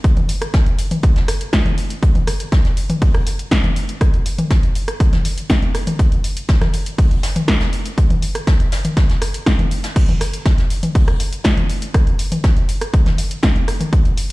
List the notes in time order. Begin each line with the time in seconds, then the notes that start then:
0.04 kick, closed hi-hat
0.17 closed hi-hat, mid tom
0.28 closed hi-hat, open hi-hat
0.42 cross-stick, closed hi-hat
0.54 kick, snare, closed hi-hat
0.66 closed hi-hat
0.78 closed hi-hat, open hi-hat
0.91 closed hi-hat, mid tom
1.03 kick, closed hi-hat
1.16 snare, closed hi-hat
1.28 cross-stick, closed hi-hat, open hi-hat
1.41 closed hi-hat
1.53 kick, snare, closed hi-hat
1.66 closed hi-hat, mid tom
1.78 closed hi-hat, open hi-hat
1.90 closed hi-hat
2.03 kick, closed hi-hat
2.15 closed hi-hat, mid tom
2.27 cross-stick, closed hi-hat, open hi-hat
2.40 closed hi-hat
2.52 kick, snare, closed hi-hat
2.65 snare, closed hi-hat
2.77 closed hi-hat, open hi-hat
2.90 closed hi-hat, mid tom
3.01 kick, closed hi-hat, open hi-hat
3.14 cross-stick, closed hi-hat
3.27 closed hi-hat, open hi-hat
3.39 closed hi-hat
3.51 kick, snare, closed hi-hat
3.63 closed hi-hat, mid tom
3.76 closed hi-hat, open hi-hat
3.89 closed hi-hat
4.01 kick, cross-stick, closed hi-hat
4.14 closed hi-hat
4.26 closed hi-hat, open hi-hat
4.38 closed hi-hat, mid tom
4.51 kick, snare, closed hi-hat
4.63 closed hi-hat
4.75 closed hi-hat, open hi-hat
4.88 cross-stick, closed hi-hat
5.00 kick, closed hi-hat
5.13 snare, closed hi-hat, mid tom
5.25 closed hi-hat, open hi-hat
5.38 closed hi-hat
5.50 kick, snare, closed hi-hat
5.62 closed hi-hat
5.75 cross-stick, closed hi-hat, open hi-hat
5.87 closed hi-hat, mid tom
5.99 kick, closed hi-hat
6.11 closed hi-hat
6.24 closed hi-hat, open hi-hat
6.37 closed hi-hat
6.48 kick, snare, closed hi-hat
6.62 cross-stick, snare, closed hi-hat, mid tom
6.73 closed hi-hat, open hi-hat
6.86 closed hi-hat
6.98 kick, closed hi-hat, open hi-hat
7.11 closed hi-hat
7.23 snare, closed hi-hat, open hi-hat
7.36 closed hi-hat, mid tom
7.48 kick, cross-stick, snare, closed hi-hat
7.60 snare, closed hi-hat
7.72 closed hi-hat, open hi-hat
7.85 closed hi-hat
7.98 kick, closed hi-hat
8.10 closed hi-hat, mid tom
8.22 closed hi-hat, open hi-hat
8.35 cross-stick, closed hi-hat
8.47 kick, snare, closed hi-hat
8.60 closed hi-hat
8.72 snare, closed hi-hat, open hi-hat
8.85 closed hi-hat, mid tom
8.97 kick, snare, closed hi-hat
9.10 snare, closed hi-hat
9.21 cross-stick, closed hi-hat, open hi-hat
9.34 closed hi-hat
9.46 kick, snare, closed hi-hat
9.59 closed hi-hat, mid tom
9.71 closed hi-hat, open hi-hat
9.83 snare, closed hi-hat
9.96 kick, closed hi-hat, crash
10.09 closed hi-hat, mid tom
10.21 cross-stick, closed hi-hat, open hi-hat
10.33 closed hi-hat
10.45 kick, snare, closed hi-hat
10.58 snare, closed hi-hat
10.70 closed hi-hat, open hi-hat
10.83 closed hi-hat, mid tom
10.95 kick, closed hi-hat, open hi-hat
11.08 cross-stick, closed hi-hat
11.19 closed hi-hat, open hi-hat
11.33 closed hi-hat
11.44 kick, snare, closed hi-hat
11.57 closed hi-hat, mid tom
11.70 closed hi-hat, open hi-hat
11.82 closed hi-hat
11.94 kick, cross-stick, closed hi-hat
12.07 closed hi-hat
12.19 closed hi-hat, open hi-hat
12.32 closed hi-hat, mid tom
12.43 kick, snare, closed hi-hat
12.57 closed hi-hat
12.68 closed hi-hat, open hi-hat
12.81 cross-stick, closed hi-hat
12.93 kick, closed hi-hat
13.06 snare, closed hi-hat, mid tom
13.18 closed hi-hat, open hi-hat
13.31 closed hi-hat
13.43 kick, snare, closed hi-hat
13.56 closed hi-hat
13.68 cross-stick, closed hi-hat, open hi-hat
13.81 closed hi-hat, mid tom
13.93 kick, closed hi-hat
14.05 closed hi-hat
14.17 closed hi-hat, open hi-hat